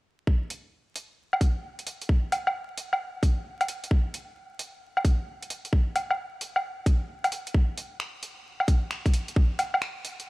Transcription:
0.27 kick loud
0.50 closed hi-hat medium
0.96 closed hi-hat medium
1.33 low woodblock medium
1.41 kick medium
1.41 closed hi-hat soft
1.79 closed hi-hat soft
1.87 closed hi-hat medium
2.02 closed hi-hat soft
2.09 kick loud
2.32 closed hi-hat soft
2.32 low woodblock medium
2.47 low woodblock medium
2.77 closed hi-hat medium
2.93 low woodblock medium
3.23 kick loud
3.23 closed hi-hat medium
3.61 closed hi-hat soft
3.61 low woodblock medium
3.68 closed hi-hat medium
3.84 closed hi-hat soft
3.91 kick loud
4.14 closed hi-hat medium
4.59 closed hi-hat medium
4.97 low woodblock soft
5.05 kick loud
5.05 closed hi-hat medium
5.43 closed hi-hat soft
5.50 closed hi-hat medium
5.65 closed hi-hat soft
5.73 kick loud
5.96 closed hi-hat soft
5.96 low woodblock medium
6.10 low woodblock medium
6.41 closed hi-hat medium
6.56 low woodblock soft
6.86 kick loud
6.86 closed hi-hat medium
7.24 closed hi-hat soft
7.24 low woodblock medium
7.32 closed hi-hat medium
7.47 closed hi-hat soft
7.54 kick loud
7.78 closed hi-hat medium
8.00 finger snap loud
8.23 closed hi-hat medium
8.60 low woodblock medium
8.68 kick loud
8.68 closed hi-hat medium
8.91 finger snap loud
9.06 kick medium
9.06 closed hi-hat soft
9.14 closed hi-hat medium
9.28 closed hi-hat soft
9.36 kick loud
9.59 closed hi-hat medium
9.59 low woodblock medium
9.74 low woodblock medium
9.82 finger snap loud
10.05 closed hi-hat medium
10.20 closed hi-hat soft

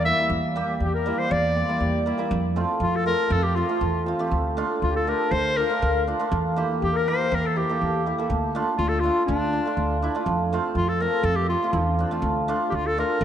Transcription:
0.00 0.10 E2 loud
0.00 0.18 G3 medium
0.05 0.12 A#3 medium
0.05 0.12 E4 medium
0.05 0.29 E5 loud
0.05 0.29 E5 medium
0.19 0.54 G3 medium
0.19 0.31 A#3 medium
0.19 0.32 E4 medium
0.30 0.60 E2 loud
0.56 1.04 G3 medium
0.56 0.68 A#3 medium
0.56 0.69 G4 loud
0.80 1.11 E2 medium
0.80 0.94 G4 medium
0.85 0.94 G4 medium
0.94 1.20 A#4 medium
1.06 1.67 G3 medium
1.06 1.19 A#3 medium
1.06 1.19 E4 medium
1.19 1.33 C5 loud
1.19 1.32 C5 medium
1.30 1.61 E2 loud
1.30 1.83 D5 medium
1.30 2.07 D5 loud
1.55 1.62 A#3 medium
1.55 1.63 C4 medium
1.68 2.16 G3 medium
1.68 1.81 A#3 medium
1.68 1.82 E4 medium
1.80 2.11 E2 medium
1.80 2.04 G4 medium
2.06 2.13 A#3 medium
2.06 2.13 E4 medium
2.18 2.37 G3 medium
2.18 2.31 A#3 medium
2.18 2.32 E4 medium
2.31 2.61 F2 loud
2.56 2.69 A3 medium
2.56 2.69 C4 medium
2.56 2.69 F4 medium
2.80 3.11 F2 medium
2.80 3.28 F4 medium
2.80 2.98 F4 medium
2.96 3.06 A4 medium
3.06 3.19 A3 medium
3.06 3.19 C4 medium
3.06 3.19 F4 medium
3.06 3.33 A#4 loud
3.30 3.61 F2 loud
3.30 3.44 A4 loud
3.30 3.45 A4 medium
3.43 3.57 G4 medium
3.55 3.63 C4 medium
3.55 4.06 F4 medium
3.55 4.04 F4 medium
3.55 3.63 F4 medium
3.69 3.82 A3 medium
3.69 3.82 C4 medium
3.69 3.82 F4 medium
3.81 4.11 E2 loud
4.06 4.13 C4 medium
4.06 4.14 F4 medium
4.19 4.32 A3 medium
4.19 4.32 C4 medium
4.19 4.32 G4 medium
4.31 4.61 D2 loud
4.57 4.69 A3 medium
4.57 4.70 D4 medium
4.57 4.70 F4 loud
4.82 5.12 D2 medium
4.82 4.89 F4 medium
4.82 4.94 F4 medium
4.89 4.96 G4 medium
4.96 5.33 F4 medium
4.96 5.10 A4 medium
5.07 5.19 A3 medium
5.07 5.20 D4 medium
5.07 5.20 G4 medium
5.07 5.33 A#4 medium
5.31 5.61 D2 loud
5.31 5.58 C5 loud
5.31 5.58 C5 medium
5.57 5.63 D4 medium
5.57 5.64 F4 medium
5.57 6.07 A#4 loud
5.57 6.03 A#4 medium
5.70 5.82 A3 medium
5.70 5.82 D4 medium
5.70 5.83 F4 medium
5.82 6.12 D2 loud
6.07 6.13 D4 medium
6.07 6.14 F4 medium
6.19 6.32 A3 medium
6.19 6.32 D4 medium
6.19 6.32 F4 medium
6.32 6.61 E2 loud
6.56 6.69 A#3 medium
6.56 6.69 E4 medium
6.56 6.69 G4 loud
6.82 7.12 E2 medium
6.82 6.93 G4 medium
6.82 6.98 G4 medium
6.93 7.28 A#4 medium
6.93 7.10 A#4 medium
7.07 7.19 A#3 medium
7.07 7.19 E4 medium
7.07 7.19 G4 medium
7.07 7.37 C5 medium
7.30 7.61 E2 loud
7.30 7.43 A#4 medium
7.35 7.48 A#4 medium
7.43 7.56 A4 medium
7.43 7.59 A4 medium
7.56 7.62 E4 medium
7.56 8.02 G4 medium
7.56 8.06 G4 medium
7.56 7.63 A#4 medium
7.70 7.81 A#3 medium
7.70 7.82 E4 medium
7.70 7.82 A4 medium
7.82 8.11 E2 medium
8.06 8.12 E4 medium
8.06 8.12 G4 medium
8.18 8.30 A#3 medium
8.18 8.31 E4 medium
8.18 8.31 A4 medium
8.30 8.59 D2 loud
8.55 8.67 A3 loud
8.55 8.67 D4 medium
8.55 8.68 F4 medium
8.78 9.08 D2 medium
8.78 8.91 F4 medium
8.78 9.02 F4 medium
8.89 9.02 A4 medium
9.00 9.16 A3 medium
9.00 9.16 D4 medium
9.00 9.25 F4 medium
9.00 9.29 F4 medium
9.05 9.17 F4 medium
9.26 9.58 D2 loud
9.26 9.97 D4 medium
9.26 9.98 D4 medium
9.53 9.59 D4 medium
9.53 9.60 F4 medium
9.65 9.78 A3 medium
9.65 9.79 D4 medium
9.65 9.79 F4 medium
9.77 10.07 D2 medium
10.02 10.09 D4 medium
10.02 10.09 E4 medium
10.15 10.27 A3 medium
10.15 10.28 D4 medium
10.15 10.28 F4 medium
10.26 10.56 F2 loud
10.53 10.64 A3 medium
10.53 10.65 C4 medium
10.53 10.65 F4 loud
10.75 11.05 F2 medium
10.75 10.90 F4 medium
10.89 11.02 A4 medium
11.00 11.13 A3 medium
11.00 11.13 C4 medium
11.00 11.14 F4 medium
11.00 11.26 A#4 loud
11.23 11.53 F2 loud
11.23 11.37 A4 loud
11.36 11.48 G4 medium
11.49 11.56 C4 medium
11.49 11.95 F4 medium
11.49 11.56 F4 medium
11.63 11.75 A3 medium
11.63 11.75 C4 medium
11.63 11.75 F4 medium
11.73 12.03 E2 loud
11.99 12.05 C4 medium
11.99 12.06 D4 medium
12.11 12.23 A3 medium
12.11 12.24 C4 medium
12.11 12.24 F4 medium
12.22 12.52 D2 loud
12.48 12.60 A3 medium
12.48 12.60 D4 medium
12.48 12.61 F4 medium
12.70 13.01 D2 medium
12.70 12.77 G4 medium
12.76 12.88 F4 medium
12.87 12.98 A4 medium
12.98 13.09 A3 medium
12.98 13.09 D4 medium
12.98 13.10 F4 medium
12.98 13.24 A#4 medium
13.21 13.24 D2 loud

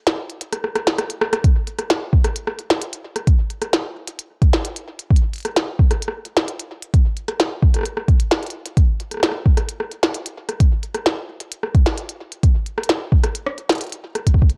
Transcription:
0.07 snare loud
0.07 closed hi-hat medium
0.30 closed hi-hat soft
0.41 closed hi-hat medium
0.53 cross-stick medium
0.53 closed hi-hat medium
0.64 cross-stick medium
0.75 cross-stick medium
0.75 closed hi-hat soft
0.87 cross-stick medium
0.87 snare loud
0.87 closed hi-hat medium
0.98 cross-stick medium
0.98 closed hi-hat medium
1.10 closed hi-hat medium
1.21 cross-stick loud
1.33 cross-stick loud
1.33 closed hi-hat medium
1.44 kick loud
1.44 closed hi-hat medium
1.67 closed hi-hat soft
1.79 cross-stick medium
1.79 closed hi-hat medium
1.90 snare loud
1.90 closed hi-hat medium
2.13 kick medium
2.24 cross-stick medium
2.24 closed hi-hat medium
2.36 closed hi-hat medium
2.47 cross-stick medium
2.59 closed hi-hat soft
2.70 snare loud
2.70 closed hi-hat medium
2.82 closed hi-hat medium
2.93 closed hi-hat medium
3.16 cross-stick medium
3.16 closed hi-hat medium
3.27 kick loud
3.27 closed hi-hat medium
3.50 closed hi-hat soft
3.62 cross-stick medium
3.62 closed hi-hat medium
3.73 snare loud
3.73 closed hi-hat medium
4.08 closed hi-hat medium
4.19 closed hi-hat medium
4.42 kick loud
4.42 closed hi-hat soft
4.53 snare loud
4.53 closed hi-hat medium
4.65 closed hi-hat medium
4.76 closed hi-hat medium
4.99 closed hi-hat medium
5.11 kick loud
5.16 closed hi-hat medium
5.33 closed hi-hat soft
5.36 closed hi-hat soft
5.38 closed hi-hat soft
5.40 closed hi-hat soft
5.43 cross-stick medium
5.43 closed hi-hat soft
5.45 closed hi-hat medium
5.56 snare loud
5.56 closed hi-hat medium
5.79 kick medium
5.91 cross-stick medium
5.91 closed hi-hat medium
6.02 closed hi-hat medium
6.08 cross-stick medium
6.25 closed hi-hat soft
6.37 snare loud
6.37 closed hi-hat medium
6.48 closed hi-hat medium
6.59 closed hi-hat medium
6.82 closed hi-hat medium
6.94 kick loud
6.94 closed hi-hat medium
7.17 closed hi-hat soft
7.28 cross-stick medium
7.28 closed hi-hat medium
7.40 snare loud
7.40 closed hi-hat medium
7.62 kick medium
7.74 cross-stick soft
7.74 closed hi-hat medium
7.76 cross-stick soft
7.79 cross-stick soft
7.81 cross-stick soft
7.83 cross-stick medium
7.83 closed hi-hat medium
7.97 cross-stick medium
8.08 kick loud
8.08 closed hi-hat soft
8.20 closed hi-hat medium
8.31 snare loud
8.31 closed hi-hat medium
8.43 closed hi-hat soft
8.46 closed hi-hat soft
8.50 closed hi-hat soft
8.66 closed hi-hat medium
8.77 kick loud
8.77 closed hi-hat medium
9.00 closed hi-hat soft
9.11 cross-stick soft
9.11 closed hi-hat medium
9.14 cross-stick soft
9.17 cross-stick soft
9.20 cross-stick soft
9.23 cross-stick soft
9.23 snare loud
9.23 closed hi-hat medium
9.26 cross-stick soft
9.29 cross-stick soft
9.31 cross-stick medium
9.46 kick medium
9.57 cross-stick medium
9.57 closed hi-hat medium
9.69 closed hi-hat medium
9.80 cross-stick medium
9.91 closed hi-hat soft
10.03 snare loud
10.03 closed hi-hat medium
10.14 closed hi-hat medium
10.26 closed hi-hat medium
10.49 cross-stick medium
10.49 closed hi-hat medium
10.60 kick loud
10.60 closed hi-hat medium
10.83 closed hi-hat soft
10.95 cross-stick medium
10.95 closed hi-hat medium
11.06 snare loud
11.06 closed hi-hat medium
11.40 closed hi-hat medium
11.52 closed hi-hat medium
11.63 cross-stick medium
11.75 kick loud
11.75 closed hi-hat soft
11.86 snare loud
11.86 closed hi-hat medium
11.98 closed hi-hat medium
12.09 closed hi-hat medium
12.32 closed hi-hat medium
12.43 kick loud
12.43 closed hi-hat medium
12.66 closed hi-hat soft
12.78 cross-stick medium
12.83 closed hi-hat medium
12.89 snare loud
12.89 closed hi-hat medium
13.12 kick medium
13.24 cross-stick medium
13.24 closed hi-hat medium
13.35 closed hi-hat medium
13.46 cross-stick medium
13.58 closed hi-hat soft
13.69 snare loud
13.69 closed hi-hat medium
13.72 closed hi-hat soft
13.75 closed hi-hat soft
13.78 closed hi-hat soft
13.81 closed hi-hat medium
13.84 closed hi-hat soft
13.87 closed hi-hat soft
13.89 closed hi-hat soft
13.92 closed hi-hat medium
14.15 cross-stick medium
14.15 closed hi-hat medium
14.27 kick soft
14.27 closed hi-hat medium
14.34 kick medium
14.42 kick medium
14.49 closed hi-hat soft

